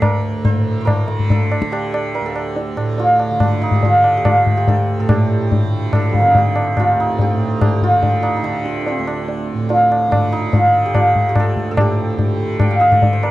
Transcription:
Already playing: D2 A2 D3 G4
0.02 A#4, tabla na, tabla ge
0.45 C5, tabla tin, tabla ge
0.54 A2
0.81 C5
0.85 A#4, tabla na, tabla ge
1.07 D3, tabla te
1.19 tabla ge
1.30 A4, tabla tin, tabla ge
1.52 tabla na
1.62 D3, tabla ke
1.72 G4, tabla na
1.94 tabla na
2.15 A#4, tabla tin
2.21 D2
2.26 A4
2.36 tabla na
2.56 tabla tin
2.77 A2, tabla na
2.98 F4, tabla tin
3.20 tabla na
3.31 D3
3.40 D4, tabla na, tabla ge
3.62 D#4, tabla te
3.71 G4, tabla ge
3.83 F4, tabla tin, tabla ge
3.88 D3
4.04 tabla na
4.17 G4
4.25 F4, tabla na, tabla ge
4.44 D2, tabla ge
4.57 G4
4.68 A4, tabla tin, tabla ge
4.99 A2 A4
5.09 A2 G4, tabla na, tabla ge
5.52 tabla tin, tabla ge
5.64 D3
5.93 A4, tabla na, tabla ge
6.09 F3 G3
6.14 A3, tabla ge
6.19 D3 A#3 C4
6.27 D4 D#4
6.33 F4, tabla tin, tabla ge
6.38 G4
6.56 tabla na
6.77 D2 F4, tabla na, tabla ge
7.00 D#4
7.19 G4, tabla tin, tabla ge
7.33 A2
7.61 G4, tabla na, tabla ge
7.82 F4, tabla ge
7.89 D3
8.03 tabla tin, tabla ge
8.23 D#4, tabla na
8.36 D#4
8.42 D3 D4, tabla te
8.66 tabla te
8.81 D4
8.87 C4, tabla tin
8.99 D2
9.08 D4, tabla na
9.28 tabla tin
9.54 A2
9.69 F4, tabla tin
9.92 tabla na
10.07 D3 D4
10.12 tabla na, tabla ge
10.32 D#4, tabla te
10.53 F4, tabla tin, tabla ge
10.63 D3
10.86 G4
10.95 F4, tabla na, tabla ge
11.15 D2, tabla ge
11.29 G4
11.36 tabla na, tabla ge
11.40 A4
11.56 tabla ge
11.71 A2 A4
11.77 G4, tabla na, tabla ge
12.19 tabla tin, tabla ge
12.27 D3
12.60 G5, tabla na, tabla ge
12.71 F5
12.80 D3 D#5, tabla te
12.92 D5, tabla ge
13.02 tabla tin, tabla ge
13.13 C5
13.23 A#4, tabla na

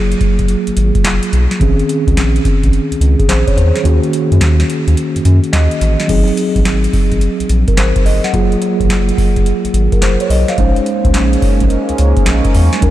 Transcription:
Already playing: F#1 F#3 A#3 F4 G#4
0.12 closed hi-hat
0.21 kick, closed hi-hat
0.39 F#1, kick, closed hi-hat
0.48 closed hi-hat
0.67 G#1, closed hi-hat
0.77 G#1, closed hi-hat
0.95 kick, closed hi-hat
1.05 F#1, snare, clap, closed hi-hat
1.23 closed hi-hat
1.33 B1, closed hi-hat
1.51 snare, closed hi-hat
1.60 A#1 D#3 C4 C#4 G#4, kick, closed hi-hat
1.79 closed hi-hat
1.89 closed hi-hat
2.07 C#2, kick, closed hi-hat
2.17 A#1, snare, clap, closed hi-hat
2.36 closed hi-hat
2.45 kick, closed hi-hat
2.63 A#1, kick, closed hi-hat
2.73 closed hi-hat
2.91 C#2, closed hi-hat
3.01 C#2, closed hi-hat
3.19 G#4, kick, closed hi-hat
3.29 A#1 C5, snare, clap, closed hi-hat
3.47 C#5, kick, closed hi-hat
3.57 E2 C5, closed hi-hat
3.75 G#4, snare, closed hi-hat
3.83 D#2 D#3 A#3 C#4 F#4, closed hi-hat
4.03 closed hi-hat
4.13 closed hi-hat
4.32 F#2, closed hi-hat
4.41 D#2, snare, clap, closed hi-hat
4.60 snare, closed hi-hat
4.70 closed hi-hat
4.88 D#2, closed hi-hat
4.97 closed hi-hat
5.16 F#2, closed hi-hat
5.25 F#2, closed hi-hat
5.44 closed hi-hat
5.53 D#2 D#5, snare, clap, closed hi-hat
5.71 closed hi-hat
5.81 A1, closed hi-hat
6.00 snare, closed hi-hat
6.07 G#1 F#3 C4 D#4 G#4, kick, closed hi-hat, crash
6.28 closed hi-hat
6.37 closed hi-hat
6.56 A#1, kick, closed hi-hat
6.65 G#1, snare, clap, closed hi-hat
6.84 closed hi-hat
6.93 kick, open hi-hat
7.12 G#1, kick, closed hi-hat
7.21 closed hi-hat
7.40 A#1, closed hi-hat
7.49 A#1, closed hi-hat
7.68 A#4, kick, closed hi-hat
7.77 G#1 C5, snare, clap, closed hi-hat
7.96 kick, closed hi-hat
8.05 G1 D#5, open hi-hat
8.24 F#5, snare, closed hi-hat
8.33 F#1 F#3 A#3 F4 G#4, kick, closed hi-hat
8.52 closed hi-hat
8.62 closed hi-hat
8.80 G#1, kick, closed hi-hat
8.90 F#1, snare, clap, closed hi-hat
9.09 closed hi-hat
9.18 kick, open hi-hat
9.36 F#1, kick, closed hi-hat
9.46 closed hi-hat
9.65 G#1, closed hi-hat
9.74 G#1, closed hi-hat
9.92 A#4, kick, closed hi-hat
10.02 F#1 C5, snare, clap, closed hi-hat
10.20 C#5, closed hi-hat
10.30 B1 D#5, open hi-hat
10.48 F5, snare, closed hi-hat
10.58 A#1 G#3 A#3 C#4 D#4 C5, kick, closed hi-hat
10.76 closed hi-hat
10.86 closed hi-hat
11.05 C#2, kick, closed hi-hat
11.14 A#1, snare, clap, closed hi-hat
11.33 closed hi-hat
11.42 kick, open hi-hat
11.60 A#1, kick, closed hi-hat
11.70 closed hi-hat
11.89 C#2, closed hi-hat
11.98 C#2, closed hi-hat
12.17 kick, closed hi-hat
12.26 A#1, snare, clap, closed hi-hat
12.45 kick, closed hi-hat
12.55 E2, open hi-hat
12.73 snare, closed hi-hat
12.81 D#2 D#3 F#3 C#4 D#4 F#4 A#4, kick, closed hi-hat

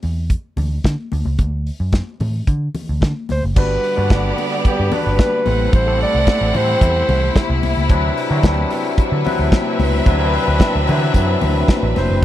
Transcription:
0.03 E2, open hi-hat, muted conga
0.30 kick, closed hi-hat
0.57 D2, open hi-hat, muted conga, low conga
0.84 D3, kick, snare, closed hi-hat, high conga
1.12 D2, open hi-hat, high conga
1.25 C#2, high conga
1.39 D2, kick, closed hi-hat, muted conga
1.67 open hi-hat
1.80 F#2
1.92 kick, snare, closed hi-hat, high conga
2.20 A2, open hi-hat, muted conga, low conga
2.47 D3, kick, closed hi-hat
2.75 open hi-hat, muted conga, low conga
2.89 D2
3.01 D3, kick, snare, closed hi-hat, high conga
3.29 D2 C5, snare, open hi-hat, high conga
3.42 F#1, high conga
3.56 G1 D3 G3 B3 D4 F#4 G4 B4 D5 F#5, kick, crash, muted conga
3.84 open hi-hat
3.96 G2 G3 A#3 D4 F#4 D5
4.04 B3
4.10 G1, kick, snare, closed hi-hat, high conga
4.38 open hi-hat, muted conga
4.65 G4, muted picked electric bass stroke, kick, closed hi-hat
4.80 G2
4.91 G3 B3 D4 F#4 B4, open hi-hat, muted conga, low conga
5.07 G1
5.19 kick, snare, closed hi-hat, high conga
5.45 A1 C3 A3 C4 E4 G4 A4 C5 F#5, open hi-hat, high conga
5.73 A1 C5, kick, closed hi-hat, muted conga
5.86 A3 C4 E4 G4 A4
6.01 D5, open hi-hat
6.15 C2
6.27 kick, snare, closed hi-hat, high conga
6.41 A1
6.54 A2 A3 C4 E4 G4 C5, open hi-hat, low conga
6.81 E2, kick, closed hi-hat
7.08 C2, open hi-hat, muted conga, low conga
7.36 kick, snare, closed hi-hat, high conga
7.50 C2
7.63 C2, open hi-hat, high conga
7.77 C#2
7.89 D2 F#3 C4 D4 E4 B4, kick, closed hi-hat, muted conga
8.17 open hi-hat
8.29 D3 F#3 C4 D4 E4 F#4
8.43 D2, kick, snare, closed hi-hat, high conga
8.70 open hi-hat, muted conga
8.98 C4 B4 E5, muted picked electric bass stroke, kick, closed hi-hat
9.12 D3
9.25 F#3 C4 D4 E4 B4, open hi-hat, muted conga, low conga
9.39 D2
9.52 kick, snare, closed hi-hat, high conga
9.80 C#2, open hi-hat, high conga
10.06 D2 F#3 C4 D4 E4 B4, kick, closed hi-hat, muted conga
10.19 F#3 C4 D4 E4 A#4
10.27 B4
10.34 open hi-hat
10.48 D2
10.59 kick, snare, closed hi-hat, high conga
10.76 D2
10.87 D3 F#3 C4 D4 E4 B4, open hi-hat, muted conga, low conga
11.14 F#2, kick, closed hi-hat
11.41 D2, open hi-hat, muted conga, low conga
11.68 kick, snare, closed hi-hat, high conga
11.83 A1
11.96 F1 C5, snare, open hi-hat, high conga
12.10 F#1
12.22 G3

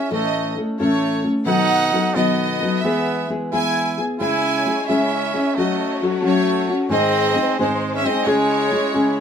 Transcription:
Already playing: C#4 E4 G#4 E5
0.11 A2 E3 A3 C#4 E4 A4 D#5
0.57 A3 C#4 E4 A4
0.80 A2 E3 A3 C#4 E4 A4 C#5
1.24 A3 C#4 E4 A4
1.45 B2 D#3 F#3 B3 D#4 A4 F#5
1.93 F#3 B3 D#4 A4
2.15 B2 D#3 F#3 B3 D#4 A4 D#5
2.61 F#3 B3 D#4 A4
2.81 E3 G#3 B3 E5
2.85 E4 G#4
3.29 G#3 B3 E4 G#4
3.53 E3 G#3 B3 E4 G#4 G#5
3.98 B3 E4 G#4
4.20 C#3 G#3 C#4 E4 G#4 C#5 G#5
4.66 G#3 C#4 E4 G#4
4.88 C#3 G#3 C#4 E4 G#4 E5
5.34 C#4 E4 G#4
5.55 F#3 A3 C#4 F#4 A4 C#5 D#5
6.02 F#3 C#4 F#4 A4
6.22 F#3 A3 C#4 F#4 A4
6.26 C#5
6.68 C#4 F#4 A4
6.89 G#2 D#3 G#3 C4 D#4 G#4 C5 D#5
7.34 G#3 C4 D#4 G#4
7.59 G#2 D#3 G#3 C4 D#4 G#4 C5
7.95 C#4 E5
8.05 G#3 C4 D#4 G#4 D#5
8.26 C#3 G#3 C#4 E4 G#4 C#5
8.71 G#3 C#4 E4 G#4
8.94 C#3 G#3 C#4 E4 G#4

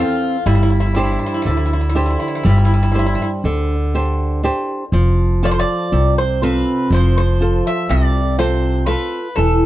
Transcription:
Already playing: C4 F4 A4 C5 E5
0.46 G1 G3 E4
0.55 E4
0.63 E4
0.70 E4
0.80 E4
0.86 E4
0.94 D4 E4 G4 C5
1.03 E4
1.11 E4
1.19 E4
1.26 E4
1.34 E4
1.42 D2 E4
1.46 D3 E4
1.57 E4
1.66 E4
1.73 E4
1.81 E4
1.89 E4
1.95 D4 E4 G4 C5
2.06 E4
2.10 E4
2.20 E4
2.28 E4
2.35 E4
2.43 G1 G3 E4
2.49 E4
2.58 E4
2.65 E4
2.74 E4
2.83 E4
2.92 D4 E4 G4 C5
2.99 E4
3.06 E4
3.15 E4
3.22 E4
3.44 D2 D3
3.94 D4 G4 C5
4.43 D4 G4 C5
4.92 F1 F3
5.43 F4 A4 C5 D5
5.51 C5
5.59 D5
5.92 C2 C3
6.18 C5
6.42 C4 F4 A4 B4
6.90 F1 F3 C5
7.18 C5
7.41 F4 A4 C5
7.67 E5
7.89 C2 C3 D5
8.39 C4 F4 A4 C5
8.86 F4 A4 B4
9.36 E1 E3 A4

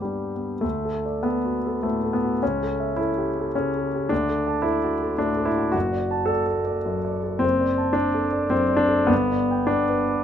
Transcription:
Already playing: G2 G3 B3 G4
0.02 G3 D4
0.35 B3
0.61 D2 A3
0.85 A4
1.05 D5
1.23 B3 A4
1.46 F#4
1.67 A4
1.83 A2 A3
2.03 A4
2.13 B3
2.24 F#4
2.43 C#2 C#4
2.63 A4
2.80 E5
2.96 E4 A4
3.18 G4
3.40 A4
3.55 C#3 C#4
3.77 A4
3.95 G4
4.09 D2 D4
4.29 A4
4.47 A5
4.62 E4 A4
4.84 F#4
5.01 A4
5.18 A2 D4
5.37 A4
5.45 E4
5.56 F#4
5.72 F#1 F#4
5.92 D5
6.11 A5
6.26 A4 D5
6.46 A4
6.65 D5
6.86 F#2
7.05 D5
7.24 A4
7.39 F#1 C4
7.61 D5
7.78 A5
7.93 D4 D5
8.14 A4
8.33 D5
8.50 F#2 C4
8.69 D5
8.77 D4
8.89 A4
9.07 G1 B3
9.31 D5
9.51 G5
9.67 D4 D5
9.89 B4
10.09 D5

